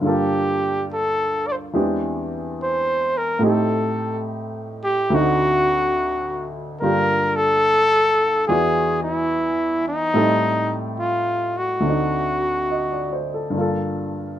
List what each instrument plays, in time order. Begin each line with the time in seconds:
0.01 grand piano G2 D3 A#3 F4
0.06 trumpet G4, grand piano A4
0.93 trumpet A4
1.47 trumpet D5
1.52 trumpet C5
1.73 grand piano E2 E3 G#3 C4 D4 G4
2.63 trumpet C5
3.17 trumpet A#4
3.39 grand piano A2 A3 C4 D#4
3.44 grand piano G4, trumpet A4
4.84 trumpet G4
5.10 grand piano D2 D3 C4
5.14 grand piano D#4 F#4, trumpet F#4
6.80 grand piano G2 D3 A#3 F4 G4, trumpet A#4
7.36 trumpet A4
8.47 grand piano E2 E3 F#4 G#4 D5, trumpet G#4
9.03 trumpet E4
9.88 trumpet D#4
10.13 grand piano A2 G3 C4 D#4 A4
10.99 trumpet F4
11.57 trumpet F#4
11.80 grand piano D2 D3
11.85 grand piano C4 D#4
11.90 grand piano F#4
12.71 grand piano D#5
12.92 grand piano D5
13.13 grand piano C5
13.34 grand piano A4
13.50 grand piano G2 D3
13.55 grand piano A#3 F4
13.61 grand piano A4